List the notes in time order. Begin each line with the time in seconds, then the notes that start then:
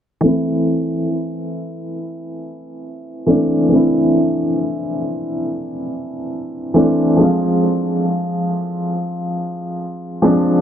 0.21 E3 A3
0.25 C4 E4
3.26 E3 A3 C4 D4
3.69 E3 A3
3.73 C4 E4
6.74 E3 A3 C4 D4
7.17 F3 G#3
7.21 C4 F4
10.22 F3 G#3 C4 D4